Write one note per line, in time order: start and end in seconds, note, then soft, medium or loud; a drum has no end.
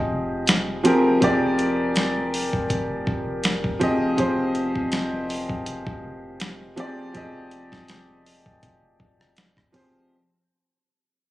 0.00 1.18 F1 loud
0.00 0.83 F3 medium
0.00 0.84 C4 medium
0.00 0.85 G4 medium
0.00 0.86 G#4 medium
0.00 3.83 D#5 loud
0.47 snare loud
0.47 closed hi-hat medium
0.83 1.19 F3 medium
0.83 1.19 C4 medium
0.83 1.20 G4 medium
0.83 1.20 G#4 medium
0.83 1.21 A#4 loud
0.83 closed hi-hat medium
1.20 2.49 F1 loud
1.20 2.59 F3 medium
1.20 2.59 C4 medium
1.20 2.60 G4 medium
1.20 2.60 G#4 medium
1.20 2.61 D5 medium
1.20 kick loud
1.20 closed hi-hat medium
1.59 closed hi-hat medium
1.96 snare loud
1.96 closed hi-hat medium
2.34 open hi-hat medium
2.53 3.05 F1 loud
2.53 kick loud
2.70 kick loud
2.70 closed hi-hat medium
3.07 3.62 F1 loud
3.07 kick loud
3.44 snare loud
3.44 closed hi-hat medium
3.64 4.16 F1 loud
3.64 kick loud
3.79 4.15 F3 medium
3.79 4.15 C4 medium
3.79 4.16 G4 medium
3.79 4.16 G#4 medium
3.79 4.17 D#5 loud
3.79 kick loud
3.79 closed hi-hat medium
4.16 4.73 F1 loud
4.16 5.55 F3 medium
4.16 5.56 C4 medium
4.16 5.56 G4 medium
4.16 5.56 G#4 medium
4.16 5.57 C5 loud
4.16 kick loud
4.16 closed hi-hat medium
4.55 closed hi-hat medium
4.76 5.47 F1 loud
4.76 kick medium
4.92 snare loud
4.92 closed hi-hat medium
5.30 open hi-hat medium
5.50 5.85 F1 loud
5.50 kick loud
5.66 closed hi-hat medium
5.87 7.11 F1 loud
5.87 kick loud
6.40 snare loud
6.40 closed hi-hat medium
6.76 7.11 F3 medium
6.76 7.12 C4 medium
6.76 7.12 G4 medium
6.76 7.13 G#4 medium
6.76 7.13 D5 loud
6.76 closed hi-hat medium
7.13 7.70 F1 loud
7.13 8.52 F3 medium
7.13 8.52 C4 medium
7.13 8.52 G4 medium
7.13 8.53 G#4 medium
7.13 8.53 D#5 medium
7.13 kick loud
7.13 closed hi-hat medium
7.51 closed hi-hat medium
7.72 8.43 F1 loud
7.72 kick medium
7.72 snare medium
7.88 snare loud
7.88 closed hi-hat medium
8.26 open hi-hat medium
8.46 8.98 F1 loud
8.46 kick loud
8.63 kick medium
8.63 closed hi-hat medium
9.00 9.55 F1 loud
9.00 kick loud
9.21 cross-stick medium
9.37 snare loud
9.37 closed hi-hat medium
9.57 10.09 F1 loud
9.57 kick loud
9.57 cross-stick medium
9.72 10.08 F3 medium
9.72 10.08 C4 medium
9.72 10.08 G4 medium
9.72 10.09 G#4 medium
9.72 10.09 C5 loud
9.72 kick loud
9.72 open hi-hat medium